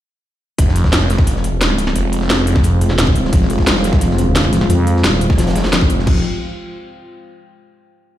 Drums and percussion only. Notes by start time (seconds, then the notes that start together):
0.58 kick, closed hi-hat
0.68 snare
0.76 closed hi-hat
0.84 kick, snare
0.92 snare, closed hi-hat
1.01 snare
1.10 snare, closed hi-hat
1.18 kick, snare
1.27 closed hi-hat
1.36 snare
1.44 closed hi-hat
1.61 snare, closed hi-hat
1.70 snare
1.78 snare, closed hi-hat
1.87 snare
1.96 closed hi-hat
2.13 closed hi-hat
2.21 snare
2.30 snare, closed hi-hat
2.47 closed hi-hat
2.56 kick, snare
2.64 closed hi-hat
2.81 closed hi-hat
2.90 snare
2.98 snare, closed hi-hat
3.07 kick, snare
3.15 closed hi-hat
3.24 snare
3.33 kick, closed hi-hat
3.42 snare
3.50 closed hi-hat
3.58 kick, snare
3.67 snare, closed hi-hat
3.76 snare
3.84 snare, closed hi-hat
3.93 kick, snare
4.01 closed hi-hat
4.10 snare
4.18 closed hi-hat
4.35 snare, closed hi-hat
4.44 snare
4.53 snare, closed hi-hat
4.61 snare
4.70 closed hi-hat
4.87 closed hi-hat
4.96 snare
5.04 snare, closed hi-hat
5.21 closed hi-hat
5.30 kick, snare
5.38 snare, closed hi-hat
5.47 snare, closed hi-hat
5.55 snare, closed hi-hat
5.64 snare, closed hi-hat
5.73 snare, closed hi-hat
5.81 kick, snare
5.89 closed hi-hat
5.99 snare
6.07 kick, crash